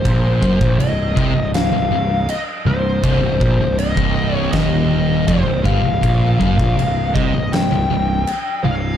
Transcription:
Already playing: lead electric guitar C5
0.04 picked electric bass A#1, distorted electric guitar A#2, kick, crash
0.42 picked electric bass F#1, distorted electric guitar F#2, kick
0.60 picked electric bass A#1, distorted electric guitar A#2, kick
0.79 picked electric bass C1, distorted electric guitar C2, lead electric guitar D#5, crash
1.16 picked electric bass C2, distorted electric guitar C3, kick
1.34 picked electric bass C1, distorted electric guitar C2
1.54 lead electric guitar F5, snare, crash
1.72 picked electric bass C1, distorted electric guitar C2
1.91 picked electric bass C1, distorted electric guitar C2
2.29 lead electric guitar D#5, crash
2.66 picked electric bass C1, distorted electric guitar C2, lead electric guitar C5
3.03 picked electric bass C1, distorted electric guitar C2, kick, crash
3.22 picked electric bass C1, distorted electric guitar C2
3.41 picked electric bass A#1, distorted electric guitar A#2, kick
3.59 picked electric bass C1, distorted electric guitar C2
3.78 lead electric guitar D#5, crash
3.97 picked electric bass C1, distorted electric guitar C2, kick
4.36 lead electric guitar C#5
4.53 picked electric bass D#1, distorted electric guitar D#2, lead electric guitar D#5, kick, snare, crash
5.27 picked electric bass F1, distorted electric guitar F2, lead electric guitar C5, kick, crash
5.46 picked electric bass C1, distorted electric guitar C2
5.64 picked electric bass G1, distorted electric guitar G2, lead electric guitar F5, kick
5.83 picked electric bass C1, distorted electric guitar C2
6.02 picked electric bass A#1, distorted electric guitar A#2, kick, crash
6.40 picked electric bass F#1, distorted electric guitar F#2, kick
6.58 picked electric bass A#1, distorted electric guitar A#2, kick
6.77 picked electric bass C1, distorted electric guitar C2, crash
7.14 picked electric bass C2, distorted electric guitar C3, lead electric guitar D#5, kick
7.33 picked electric bass C1, distorted electric guitar C2
7.52 lead electric guitar G5, snare, crash
7.71 picked electric bass C1, distorted electric guitar C2
7.89 picked electric bass C1, distorted electric guitar C2
8.27 crash
8.64 picked electric bass C1, distorted electric guitar C2, lead electric guitar F5

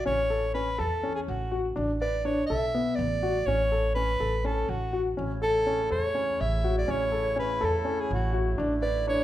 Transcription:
0.06 upright bass A1, grand piano C#4, soprano saxophone C#5
0.30 grand piano A4
0.54 grand piano C#4, soprano saxophone B4
0.79 upright bass E2, grand piano A4, soprano saxophone A4
1.03 grand piano C#4
1.15 soprano saxophone G#4
1.28 upright bass A1, soprano saxophone F#4
1.52 grand piano F#4
1.76 upright bass A1, grand piano D4
2.01 grand piano B4, soprano saxophone D5
2.25 grand piano D4, soprano saxophone C#5
2.46 upright bass B1, grand piano A4, soprano saxophone E5
2.74 grand piano B3
2.95 upright bass A1, soprano saxophone D5
3.23 grand piano F#4
3.46 upright bass A1, grand piano C#4, soprano saxophone C#5
3.72 grand piano A4
3.95 grand piano C#4, soprano saxophone B4
4.20 upright bass A1, grand piano A4
4.44 grand piano C#4, soprano saxophone A4
4.69 upright bass A1, soprano saxophone F#4
4.93 grand piano F#4
5.17 upright bass A1, woodwind section C#3 A3 E4, grand piano C#4
5.42 grand piano A4, soprano saxophone A4
5.66 grand piano C#4
5.91 upright bass E2, grand piano A4, soprano saxophone C#5
6.15 grand piano C#4
6.41 upright bass A1, soprano saxophone E5
6.64 grand piano F#4
6.78 soprano saxophone D5
6.88 upright bass A1, grand piano C#4, soprano saxophone C#5
7.12 grand piano A4
7.36 grand piano C#4, soprano saxophone B4
7.61 upright bass E2, grand piano A4, soprano saxophone A4
7.85 grand piano C#4
8.01 soprano saxophone G#4
8.11 upright bass A1, soprano saxophone F#4
8.33 grand piano F#4
8.58 upright bass A1, woodwind section D3, grand piano D4
8.82 grand piano B4, soprano saxophone D5
9.07 grand piano D4, soprano saxophone C#5

